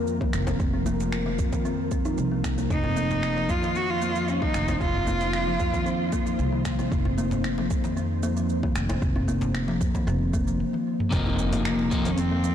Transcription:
Already playing: upright bass F2, ambient pad F3 C4 F4 A#4
0.07 shaker
0.21 kalimba D#3, kick, djembe tone
0.33 upright bass F1, finger snap, shaker
0.47 kalimba C4, djembe slap, djembe tone, djembe bass, shaker
0.60 upright bass F1, kick, shaker
0.74 kalimba C4
0.86 kalimba A#3, djembe bass, shaker
1.00 djembe slap, shaker
1.12 finger snap, shaker
1.26 kalimba F3
1.39 upright bass F2, kick, shaker
1.52 kalimba D#3, kick, djembe slap, djembe tone, shaker
1.65 kalimba C4, shaker
1.91 kalimba C4, kick, shaker
2.05 kalimba D#4, shaker
2.18 upright bass C2, shaker
2.32 kalimba A#3
2.44 kalimba A#3, finger snap, kick, shaker
2.58 kalimba A#3, djembe tone, shaker
2.70 upright bass F1, ambient pad D#4 C5, cello D#4, kick, shaker
2.84 kalimba C4, mid tom, djembe bass
2.97 kalimba A#3, shaker
3.10 mid tom, djembe slap, djembe tone, shaker
3.23 finger snap, shaker
3.37 kalimba F3, djembe slap
3.49 upright bass F2, cello F4, kick, shaker
3.63 kalimba D#3, djembe slap, djembe tone, shaker
3.75 kalimba C4, cello F#4, shaker
3.90 cello F4
4.02 kalimba A#3, shaker
4.16 kalimba F3, shaker
4.28 cello C#4, shaker
4.42 kalimba D#3, cello D#4, kick, djembe tone
4.54 upright bass F1, finger snap, shaker
4.68 kalimba C4, djembe slap, djembe tone, djembe bass, shaker
4.81 upright bass F1, cello F4, kick, shaker
4.94 kalimba C4, mid tom
5.07 kalimba A#3, djembe bass, shaker
5.21 djembe slap, shaker
5.33 finger snap, shaker
5.47 kalimba F3
5.60 upright bass F2, kick, shaker
5.73 kalimba D#3, kick, djembe slap, djembe tone, shaker
5.86 kalimba C4, shaker
6.12 kalimba A#3, kick, shaker
6.26 kalimba F3, shaker
6.39 upright bass C2, shaker
6.52 kalimba D#3
6.65 finger snap, kick, shaker
6.79 kalimba C4, djembe tone, shaker
6.92 upright bass F1, kick, shaker
7.05 kalimba C4, mid tom, djembe bass
7.18 kalimba A#3, shaker
7.31 mid tom, djembe slap, djembe tone, shaker
7.44 finger snap, shaker
7.58 kalimba F3, djembe slap
7.70 upright bass F2, kick, shaker
7.84 kalimba D#3, djembe slap, djembe tone, shaker
7.97 kalimba C4, shaker
8.23 kalimba A#3, shaker
8.37 kalimba F3, shaker
8.49 shaker
8.63 kalimba D#3, kick, djembe tone
8.76 upright bass F1, finger snap, shaker
8.89 kalimba C4, djembe slap, djembe tone, djembe bass, shaker
9.02 upright bass F1, kick, shaker
9.16 kalimba C4, mid tom, djembe bass
9.28 kalimba A#3, djembe bass, shaker
9.41 mid tom, djembe slap, djembe tone, shaker
9.55 finger snap, shaker
9.68 kalimba F3, djembe slap
9.81 upright bass F2, kick, shaker
9.95 kalimba D#3, kick, djembe slap, djembe tone, shaker
10.07 upright bass F1, kalimba C4, shaker
10.33 kalimba A#3, kick, shaker
10.47 kalimba F3, shaker
10.60 high tom
10.74 high tom
11.00 mid tom
11.10 upright bass F1, clean electric guitar C3 F3 A#3, kalimba C4, ambient pad D#4 A#4 C5 F5, kick, open hi-hat, impact, shaker
11.14 clean electric guitar D#4
11.26 mid tom, djembe bass
11.39 shaker
11.52 kalimba A#3, mid tom, open hi-hat, djembe slap, djembe tone, shaker
11.65 cello A#3, finger snap, open hi-hat, shaker
11.79 djembe slap
11.91 upright bass F2, clean electric guitar C3 F3 A#3 D#4, kalimba F3, kick, shaker
12.05 kalimba D#3, open hi-hat, djembe slap, djembe tone, shaker
12.11 cello C#4
12.18 kalimba C4, cello C4, open hi-hat, shaker
12.31 kalimba A#3
12.44 kalimba F3, shaker

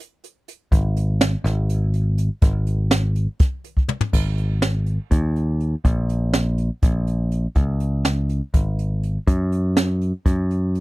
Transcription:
0.00 closed hi-hat
0.24 closed hi-hat
0.48 closed hi-hat
0.72 picked electric bass G#1, kick, closed hi-hat
0.96 closed hi-hat
1.21 snare, closed hi-hat
1.44 picked electric bass G#1, snare, closed hi-hat
1.69 closed hi-hat
1.94 closed hi-hat
2.18 closed hi-hat
2.42 picked electric bass G#1, kick, closed hi-hat
2.67 closed hi-hat
2.91 snare, closed hi-hat
3.15 closed hi-hat
3.40 kick, closed hi-hat
3.64 closed hi-hat
3.77 kick
3.89 mid tom
4.01 floor tom
4.13 picked electric bass G#1, kick, crash
4.38 closed hi-hat
4.62 snare, closed hi-hat
4.86 closed hi-hat
5.11 picked electric bass D#2, kick, closed hi-hat
5.36 closed hi-hat
5.60 closed hi-hat
5.85 picked electric bass A#1, kick, closed hi-hat
6.09 closed hi-hat
6.33 snare, closed hi-hat
6.58 closed hi-hat
6.83 picked electric bass A#1, kick, closed hi-hat
7.07 closed hi-hat
7.31 closed hi-hat
7.55 picked electric bass C#2, kick, closed hi-hat
7.80 closed hi-hat
8.05 snare, closed hi-hat
8.29 closed hi-hat
8.54 picked electric bass G#1, kick, closed hi-hat
8.79 closed hi-hat
9.03 closed hi-hat
9.27 picked electric bass F#2, kick, closed hi-hat
9.52 closed hi-hat
9.77 snare, closed hi-hat
10.01 closed hi-hat
10.26 picked electric bass F#2, kick, closed hi-hat
10.51 closed hi-hat
10.75 closed hi-hat

